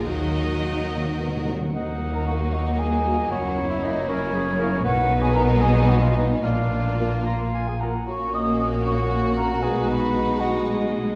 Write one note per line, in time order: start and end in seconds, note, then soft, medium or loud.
0.07 1.51 D#2 soft
0.07 1.51 D#3 soft
0.07 0.15 D#3 soft
0.07 1.51 F#3 soft
0.07 0.84 A#3 soft
0.07 1.54 D#4 soft
0.07 0.84 F#4 soft
0.07 1.51 F#4 soft
0.07 1.51 A#4 soft
0.07 1.45 D#5 medium
0.16 0.23 D#3 soft
0.24 0.31 D#3 soft
0.32 0.39 D#3 soft
0.40 0.47 D#3 soft
0.48 0.55 D#3 soft
0.56 0.63 D#3 soft
0.64 0.71 D#3 soft
0.72 0.78 D#3 soft
0.79 0.87 D#3 soft
0.88 0.95 D#3 soft
0.88 1.04 A#3 soft
0.96 1.03 D#3 soft
1.04 1.11 D#3 soft
1.12 1.19 D#3 soft
1.19 1.27 D#3 soft
1.19 1.32 B3 soft
1.28 1.36 D#3 medium
1.37 1.44 D#3 medium
1.45 1.51 D#3 medium
1.45 1.74 C#4 soft
1.52 1.60 D#3 medium
1.61 1.68 D#3 medium
1.74 3.27 D#2 medium
1.74 3.27 D#2 soft
1.74 4.81 F#3 soft
1.74 4.81 A#3 soft
1.74 3.26 D#4 soft
1.74 2.16 D#4 soft
1.74 2.11 D#5 medium
1.74 2.55 F#5 medium
2.14 2.26 A#4 medium
2.14 2.27 A#5 medium
2.27 2.36 A#3 soft
2.27 2.52 F#4 medium
2.27 2.36 F#4 soft
2.27 2.33 F#5 medium
2.53 2.65 F#4 medium
2.53 3.30 D#5 medium
2.53 2.80 F#5 medium
2.79 3.30 G#4 medium
2.79 3.32 G#5 medium
3.05 3.14 A#3 soft
3.05 3.14 F#4 soft
3.30 4.82 F#1 medium
3.30 4.81 F#2 medium
3.30 4.80 E4 medium
3.30 3.72 F#4 medium
3.30 4.10 C#5 medium
3.30 3.68 F#5 medium
3.69 3.85 E4 medium
3.69 3.80 E5 medium
3.81 3.92 A#3 medium
3.81 4.08 D#4 medium
3.81 3.91 E4 medium
3.81 4.05 D#5 medium
4.06 4.83 C#4 medium
4.06 4.36 A#4 medium
4.06 4.82 C#5 medium
4.34 4.59 G#4 medium
4.59 4.68 A#3 medium
4.59 4.68 E4 medium
4.59 4.83 A#4 medium
4.83 6.43 B1 medium
4.83 6.43 B2 medium
4.83 6.39 F#3 medium
4.83 6.39 B3 medium
4.83 6.39 D#4 medium
4.83 5.23 F#4 medium
4.83 5.61 B4 medium
4.83 5.22 F#5 loud
5.22 5.36 G#4 medium
5.22 5.35 G#5 medium
5.34 5.45 B3 medium
5.34 5.45 D#4 medium
5.34 5.63 A#4 medium
5.34 5.41 A#5 medium
5.61 5.91 G#4 medium
5.61 6.42 D#5 medium
5.61 5.91 G#5 loud
5.89 6.01 F#4 medium
5.89 6.02 F#5 medium
6.02 6.16 F4 medium
6.02 6.17 F5 medium
6.15 6.26 B3 medium
6.15 6.26 D#4 soft
6.15 6.29 D#4 medium
6.15 6.43 D#5 medium
6.43 7.84 A#1 medium
6.43 7.84 A#2 medium
6.43 7.83 A#3 medium
6.43 7.83 A#3 soft
6.43 7.25 D4 medium
6.43 7.83 F4 medium
6.43 7.25 D5 medium
6.43 7.19 F5 medium
6.99 7.08 A#3 soft
6.99 7.08 F4 soft
7.26 7.67 F4 medium
7.26 7.69 F5 medium
7.26 7.38 A#5 soft
7.54 7.82 G#5 medium
7.68 7.74 G#4 soft
7.68 7.82 G#5 medium
7.80 7.90 A#3 soft
7.80 7.90 F4 soft
7.80 7.94 A#4 soft
7.80 8.07 F#5 soft
7.80 8.07 A#5 medium
8.06 9.59 A#1 medium
8.06 9.59 A#2 medium
8.06 9.59 A#3 medium
8.06 9.60 C#4 medium
8.06 11.12 F#4 medium
8.06 8.36 C#5 medium
8.06 8.36 C#6 medium
8.34 8.67 D#5 medium
8.34 8.67 D#6 medium
8.85 9.34 C#5 medium
8.85 9.65 F#5 medium
8.85 9.33 C#6 medium
9.37 9.64 A#4 medium
9.37 9.61 A#5 medium
9.62 11.15 B1 medium
9.62 11.15 B2 medium
9.62 11.15 G#3 medium
9.62 11.12 D#4 medium
9.62 9.90 G#4 medium
9.62 10.40 B4 medium
9.62 9.68 G#5 medium
9.89 10.39 B4 medium
9.89 10.41 B5 medium
10.40 10.64 F#4 medium
10.40 11.15 D#5 medium
10.40 10.65 F#5 medium